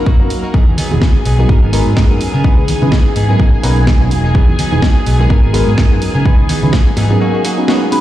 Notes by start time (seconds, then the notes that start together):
Already playing: A#4 A#5
0.06 F#3 A#3 D#4 F#4, kick, shaker
0.19 F#2 B3 C#4 D#4 F#4 A#4, shaker
0.30 open hi-hat
0.43 A#3 D#4 F#4, shaker
0.53 F#3 B3 D#4 E4 G#4 G#5, muted fingered electric bass stroke, kick, shaker
0.67 E2, shaker
0.77 F#3 B3 D#4 G#4, open hi-hat, low conga
0.91 E1 F#3 B3 D#4 E4 G#4, high conga, low conga, shaker
1.01 F#3 B3 D#4 G#4, kick, snare
1.16 shaker
1.25 B1 F#3 B3 D#4 G#4, open hi-hat
1.38 G#3 B3 D#4 F#4 G#4 A#4, high conga, shaker
1.49 G#2 F#3 B3 D#4 A#4, kick, shaker
1.62 G#1 B3 D#4 A#4, shaker
1.72 F#3 G#3 B3 D#4 F#4 A#4, open hi-hat
1.85 G#2, shaker
1.96 F#3 B3 D#4 A#4, kick, snare
2.10 F#2 G#3 B3 D#4 F#4 A#4, shaker
2.21 open hi-hat
2.34 C#3 B3 D#4 A#4, shaker
2.44 E3 G#3 B3 C#4 D#4 E4 G#4 B4, muted fingered electric bass stroke, kick, shaker
2.58 C#2, shaker
2.68 E3 B3 D#4 G#4, open hi-hat, low conga
2.81 C#3 G#3 C#4 D#4 E4 B4, high conga, low conga, shaker
2.92 E3 B3 D#4 G#4, kick, snare, shaker
3.06 shaker
3.15 G#2 E3 B3 D#4 G#4, open hi-hat
3.29 B3 C#4 D#4 F#4 G#4 A#4, high conga, shaker
3.39 F#3 A#3 D#4, kick, shaker
3.53 A#3 D#4, muted fingered electric bass stroke, shaker
3.63 B1 F#3 A#3 B3 C#4 D#4 F#4 A#4, open hi-hat
3.76 shaker
3.87 F#3 A#3 D#4, kick, snare, shaker
4.00 B1 B3 C#4 D#4 F#4 A#4, shaker
4.11 E1, open hi-hat
4.24 A#3 D#4, shaker
4.35 F#3 B3 D#4 E4 G#4, kick, shaker
4.49 E2, shaker
4.58 F#3 B3 D#4 G#4, open hi-hat, low conga
4.72 E1 F#3 B3 D#4 E4 G#4, high conga, low conga, shaker
4.81 F#3 B3 D#4 G#4, kick, snare, shaker
4.96 shaker
5.06 B1 F#3 B3 D#4 G#4, open hi-hat
5.19 G#3 B3 D#4 F#4 G#4 A#4, high conga, shaker
5.30 G#2 F#3 B3 D#4 A#4, kick, shaker
5.43 G#1 B3 D#4 A#4, shaker
5.53 F#3 G#3 B3 D#4 F#4 A#4, open hi-hat
5.67 G#2, shaker
5.78 F#3 B3 D#4 A#4, kick, snare
5.91 F#2 G#3 B3 D#4 F#4 A#4, shaker
6.02 open hi-hat
6.14 C#3 B3 D#4 A#4, shaker
6.25 E3 G#3 B3 C#4 D#4 E4 G#4 B4, muted fingered electric bass stroke, kick, shaker
6.39 C#2, shaker
6.49 E3 B3 D#4 G#4, open hi-hat, low conga
6.62 C#3 G#3 C#4 D#4 E4 B4, high conga, low conga, shaker
6.73 E3 B3 D#4 G#4, kick, snare, shaker
6.86 shaker
6.96 G#2 E3 B3 D#4 G#4, snare, open hi-hat
7.09 B3 C#4 D#4 F#4 G#4 A#4, high conga, shaker
7.20 F#3 A#3 D#4 F#4, shaker
7.33 A#3 D#4 F#4, shaker
7.44 F#3 A#3 D#4 F#4, open hi-hat
7.58 B3 C#4 D#4 F#4 A#4, shaker
7.68 F#3 A#3 B3 C#4 D#4 F#4 C#5, snare, shaker
7.82 shaker
7.92 B3 C#4 D#4 F#4 B4, open hi-hat